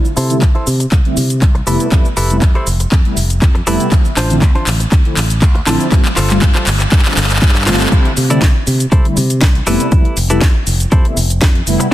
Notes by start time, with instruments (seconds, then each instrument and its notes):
0.05 closed hi-hat, shaker
0.17 fingered electric bass C3, clean electric guitar E4 A4 C5, open hi-hat, shaker
0.30 analog polysynth D3 G3 A3 C4 E4, closed hi-hat, shaker
0.42 fingered electric bass C2, kick, clap, closed hi-hat, shaker
0.55 clean electric guitar E4 A4 C5, closed hi-hat
0.67 fingered electric bass C3, open hi-hat, shaker
0.80 muted clean electric guitar stroke, closed hi-hat, shaker
0.92 fingered electric bass C2, kick, clap, closed hi-hat, shaker
1.05 analog polysynth D3 G3 A3 C4 E4, closed hi-hat
1.17 fingered electric bass C3, open hi-hat, shaker
1.30 closed hi-hat, shaker
1.42 fingered electric bass C2, kick, clap, closed hi-hat, shaker
1.55 muted clean electric guitar stroke, closed hi-hat
1.67 fingered electric bass F1, analog polysynth C3 G3 A3 B3 E4, clean electric guitar E4 G4 A4 B4, open hi-hat, shaker
1.80 closed hi-hat, shaker
1.92 fingered electric bass F2, analog polysynth C3 G3 A3 B3 E4, kick, clap, closed hi-hat, shaker
2.05 closed hi-hat, shaker
2.17 fingered electric bass F1, clean electric guitar E4 G4 A4 B4, open hi-hat, shaker
2.30 analog polysynth C3 G3 A3 B3 E4, closed hi-hat, shaker
2.42 fingered electric bass F2, kick, clap, closed hi-hat, shaker
2.55 clean electric guitar E4 G4 A4 C5, closed hi-hat
2.67 fingered electric bass F1, open hi-hat, shaker
2.80 muted clean electric guitar stroke, closed hi-hat, shaker
2.92 fingered electric bass F2, kick, clap, closed hi-hat, shaker
3.05 analog polysynth C3 G3 A3 B3 E4, closed hi-hat
3.17 fingered electric bass F1, open hi-hat, shaker
3.30 closed hi-hat, shaker
3.42 fingered electric bass F2, kick, clap, closed hi-hat, shaker
3.55 muted clean electric guitar stroke, closed hi-hat
3.66 fingered electric bass F1, analog polysynth C3 G3 A3 B3 E4, clean electric guitar E4 G4 A4 B4, open hi-hat, shaker
3.80 closed hi-hat, shaker
3.92 fingered electric bass D2, analog polysynth D3 F3 A3 C4 E4, kick, clap, closed hi-hat, shaker
4.05 closed hi-hat, shaker
4.17 fingered electric bass A1, clean electric guitar D4 F4 C5, clap, open hi-hat, shaker
4.30 analog polysynth D3 F3 A3 C4 E4, closed hi-hat, shaker
4.42 fingered electric bass D2, kick, clap, closed hi-hat, shaker
4.55 clean electric guitar D4 F4 C5, closed hi-hat
4.67 fingered electric bass A1, clap, open hi-hat, shaker
4.80 muted clean electric guitar stroke, closed hi-hat, shaker
4.92 fingered electric bass D2, kick, clap, closed hi-hat, shaker
5.05 analog polysynth D3 F3 A3 C4 E4, closed hi-hat
5.17 fingered electric bass A1, clap, open hi-hat, shaker
5.30 closed hi-hat, shaker
5.42 fingered electric bass D2, kick, clap, closed hi-hat, shaker
5.55 muted clean electric guitar stroke, closed hi-hat
5.66 fingered electric bass A1, analog polysynth D3 F3 A3 C4 E4, clean electric guitar D4 F4 A4, clap, open hi-hat, shaker
5.80 closed hi-hat, shaker
5.92 fingered electric bass G2, analog polysynth D3 G3 A3 C4 F4, kick, clap, closed hi-hat, shaker
6.05 clap, closed hi-hat, shaker
6.16 fingered electric bass G1, clean electric guitar F4 A4 C5, clap, open hi-hat, shaker
6.30 analog polysynth D3 G3 A3 C4 F4, clap, closed hi-hat, shaker
6.42 fingered electric bass G2, kick, clap, closed hi-hat, shaker
6.54 clean electric guitar F4 A4 C5, clap, closed hi-hat
6.67 fingered electric bass G1, clap, open hi-hat, shaker
6.80 muted clean electric guitar stroke, clap, closed hi-hat, shaker
6.92 fingered electric bass G2, kick, clap, closed hi-hat, shaker
6.99 clap
7.05 analog polysynth D3 G3 A3 C4 F4, muted fingered electric bass stroke, clap, closed hi-hat, shaker
7.11 clap
7.17 fingered electric bass G1, clap, open hi-hat, shaker
7.24 clap
7.30 clap, closed hi-hat, shaker
7.36 clap
7.42 fingered electric bass G2, kick, clap, closed hi-hat, shaker
7.49 clap
7.55 muted clean electric guitar stroke, clap, closed hi-hat, shaker
7.61 clap
7.66 fingered electric bass G1, analog polysynth D3 G3 A3 C4 F4, clean electric guitar F4 A4 C5, clap, open hi-hat, shaker
7.74 clap
7.80 clap, closed hi-hat, shaker
7.86 clap
7.92 fingered electric bass C2, analog polysynth D3 G3 A3 C4 E4, clean electric guitar E4 G4 A4 C5, kick, closed hi-hat, shaker
8.05 closed hi-hat
8.17 fingered electric bass C3, open hi-hat, shaker
8.30 analog polysynth D3 G3 A3 C4 E4, clean electric guitar E4 G4 A4 D5, closed hi-hat, shaker
8.42 fingered electric bass C2, kick, snare, closed hi-hat, shaker
8.55 muted clean electric guitar stroke
8.67 fingered electric bass C3, open hi-hat, shaker
8.80 closed hi-hat, shaker
8.92 fingered electric bass C2, clean electric guitar E4 G4 A4 C5, kick, closed hi-hat, shaker
9.05 analog polysynth D3 G3 A3 C4 E4, closed hi-hat
9.17 fingered electric bass C3, muted clean electric guitar stroke, open hi-hat, shaker
9.30 closed hi-hat, shaker
9.41 fingered electric bass C2, kick, snare, closed hi-hat, shaker
9.55 closed hi-hat
9.67 fingered electric bass F1, analog polysynth C3 G3 A3 B3 E4, clean electric guitar E4 G4 A4 B4, open hi-hat, shaker
9.80 closed hi-hat, shaker
9.92 fingered electric bass F2, analog polysynth C3 G3 A3 B3 E4, kick, closed hi-hat, shaker
10.05 closed hi-hat
10.17 fingered electric bass F1, open hi-hat, shaker
10.30 analog polysynth C3 G3 A3 B3 E4, clean electric guitar E4 G4 A4 B4, closed hi-hat, shaker
10.41 fingered electric bass F2, kick, snare, closed hi-hat, shaker
10.55 muted clean electric guitar stroke
10.67 fingered electric bass F1, open hi-hat, shaker
10.80 closed hi-hat, shaker
10.92 fingered electric bass F2, clean electric guitar E4 G4 A4 C5, kick, closed hi-hat, shaker
11.05 analog polysynth C3 G3 A3 B3 E4, muted fingered electric bass stroke, closed hi-hat
11.17 fingered electric bass F1, muted clean electric guitar stroke, open hi-hat, shaker
11.30 closed hi-hat, shaker
11.41 fingered electric bass F2, kick, snare, closed hi-hat, shaker
11.55 closed hi-hat
11.67 fingered electric bass F1, analog polysynth C3 G3 A3 B3 E4, open hi-hat, shaker
11.80 muted clean electric guitar stroke, closed hi-hat, shaker